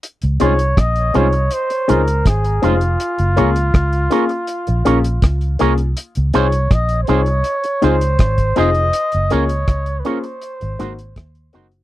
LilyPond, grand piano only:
\new Staff \with { instrumentName = "Grand piano" } { \time 4/4 \key des \major \tempo 4 = 81 r8 <c' ees' f' aes'>16 r8. <c' ees' f' aes'>16 r8. <c' ees' f' aes'>16 r8. <c' ees' f' aes'>16 <f' aes'>16 | r8 <bes des' f' aes'>16 r8. <bes des' f' aes'>16 r8. <bes des' f' aes'>16 r8. <bes des' f' aes'>16 <f' aes'>16 | r8 <c' ees' f' aes'>16 r8. <c' ees' f' aes'>16 r8. <c' ees' f' aes'>16 r8. <c' ees' f' aes'>16 r16 | r8 <bes des' f' aes'>16 r8. <bes des' f' aes'>16 r8. <bes c' ees' ges'>16 r8. <bes c' ees' ges'>16 r16 | }